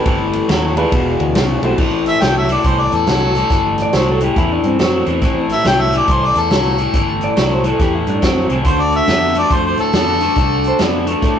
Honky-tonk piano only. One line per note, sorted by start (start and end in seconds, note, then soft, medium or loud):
0.00 0.45 A3 medium
0.00 0.46 C4 medium
0.00 0.46 E4 medium
0.00 0.46 G4 medium
0.00 0.46 B4 medium
0.77 1.32 G#3 medium
0.77 1.32 D4 medium
0.77 1.32 E4 medium
0.77 1.32 F4 medium
0.77 1.33 B4 medium
1.63 2.18 A3 medium
1.63 2.18 C4 medium
1.63 2.18 E4 medium
1.63 2.18 G4 medium
1.63 2.18 C5 medium